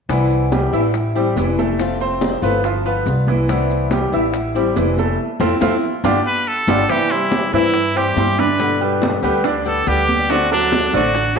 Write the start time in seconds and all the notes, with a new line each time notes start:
0.09 C2 C3 E3 G3 B3 E4, high bongo, high conga, maracas
0.30 high bongo, high conga, maracas
0.52 G3 G4, high bongo, high conga, maracas
0.72 A1 E3 G3 B3 E4 E5, high bongo, high conga, maracas
0.94 muted nylon-string guitar stroke, high bongo, high conga, maracas
1.15 G3 C4 E4 G4, high bongo, high conga, maracas
1.36 F1 E3 G3 C4 E4, high bongo, low bongo, high conga, maracas
1.59 A3 A4, high conga, maracas
1.79 C3 A3 C4 F4, high bongo, high conga, maracas
2.00 C4 C5, high bongo, high conga, maracas
2.21 high bongo, high conga, maracas
2.42 G1 E3 A3 B3 C4 F4 B4, high bongo, high conga, maracas
2.64 F3 F4, muted nylon-string guitar stroke, high bongo, high conga, maracas
2.85 B3 F4 B4, high bongo, high conga, maracas
3.06 C2 G3 B3 F4, high bongo, low bongo, high conga, maracas
3.27 E3 E4, high conga, maracas
3.48 C3 E3 G3 B3 E4, high bongo, high conga, maracas
3.70 high bongo, high conga, maracas
3.91 G3 G4, high bongo, high conga, maracas
4.12 A1 E3 G3 B3 E4 E5, high bongo, high conga, maracas
4.34 muted nylon-string guitar stroke, high bongo, high conga, maracas
4.55 G3 C4 E4 G4, high bongo, high conga, maracas
4.75 F1 E3 G3 C4 E4, high bongo, low bongo, high conga, maracas
4.97 A3 A4, high conga, maracas
5.40 F2 F3 A3 C4 E4 F4, high bongo, high conga, maracas
5.61 F2 F3 A3 C4 E4 F4, high bongo, high conga, maracas
6.04 G1 G3 B3 D4 F4 G4, high bongo, high conga, maracas
6.26 B4
6.48 A4
6.67 G1 G3 B3 D4 F4 G4, high bongo, high conga, maracas
6.88 C3 E3 G3 C4 E4 G4 E5, high bongo, high conga, maracas
7.10 G3 E4 G4 C5, high bongo, high conga, maracas
7.31 high bongo, high conga, maracas
7.52 G2 E3 G3 C4 E4 E5, high bongo, high conga, maracas
7.74 muted nylon-string guitar stroke, high bongo, high conga, maracas
7.95 E3 G3 C4 E4 G4 C5, high bongo, high conga, maracas
8.16 G2 E3 G3 C4 E4 G4 C5, high bongo, low bongo, high conga, maracas
8.38 D3 D4 B4 D5, high conga, maracas
8.58 B2 D3 G3 B3 G4, high bongo, high conga, maracas
8.80 G3 G4 B4, high bongo, high conga, maracas
9.02 high bongo, high conga, maracas
9.22 D2 D3 G3 B3 G4 B4, high bongo, high conga, maracas
9.44 D3 D4 D5, muted nylon-string guitar stroke, high bongo, high conga, maracas
9.65 D3 G3 B3 G4 A4, high bongo, high conga, maracas
9.87 D2 D3 G3 B3 G4 B4, high bongo, low bongo, high conga, maracas
10.08 high conga, maracas
10.30 D3 A3 C4 D4 F#4 D5, high bongo, high conga, maracas
10.51 F#3 D4 F#4 A4, high bongo, high conga, maracas
10.72 high bongo, high conga, maracas
10.93 A1 D3 A3 C4 D4 F#4 D5, high bongo, high conga, maracas
11.14 muted nylon-string guitar stroke, high bongo, high conga, maracas
11.36 F#4, high conga